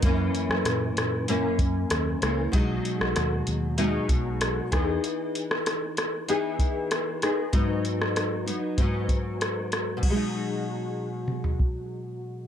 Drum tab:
CC |----------------|----------------|----------------|----------------|
HH |x-x-x-x-x-x-x-x-|x-x-x-x-x-x-x-x-|x-x-x-x-x-x-x-x-|x-x-x-x-x-x-x-x-|
SD |---rr-r-----r-r-|---rr-------r-r-|---rr-r-----r-r-|---rr-------r-r-|
T2 |----------------|----------------|----------------|----------------|
FT |----------------|----------------|----------------|----------------|
BD |o---------o-----|o---------o---o-|----------o-----|o-------o-o-----|

CC |x---------------|
HH |----------------|
SD |----------------|
T2 |--------o-------|
FT |---------o------|
BD |o---------o-----|